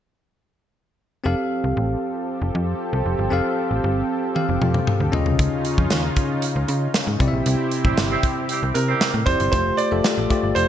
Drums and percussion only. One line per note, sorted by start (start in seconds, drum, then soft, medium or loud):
4.36 high tom medium
4.62 mid tom medium
4.74 mid tom medium
4.87 mid tom medium
5.13 floor tom medium
5.26 floor tom medium
5.39 kick loud
5.39 closed hi-hat medium
5.65 closed hi-hat medium
5.78 kick medium
5.90 snare medium
5.90 closed hi-hat medium
6.16 kick medium
6.16 closed hi-hat medium
6.42 closed hi-hat medium
6.68 closed hi-hat medium
6.94 snare medium
6.94 closed hi-hat medium
7.20 kick loud
7.20 closed hi-hat medium
7.46 closed hi-hat medium
7.71 closed hi-hat medium
7.85 kick medium
7.97 snare loud
7.97 closed hi-hat medium
8.23 kick medium
8.23 closed hi-hat medium
8.49 closed hi-hat medium
8.75 closed hi-hat medium
9.01 snare medium
9.01 closed hi-hat medium
9.27 kick medium
9.27 closed hi-hat medium
9.40 closed hi-hat medium
9.53 kick loud
9.53 closed hi-hat medium
9.78 closed hi-hat medium
10.04 snare loud
10.04 closed hi-hat medium
10.30 kick medium
10.30 closed hi-hat medium
10.56 closed hi-hat medium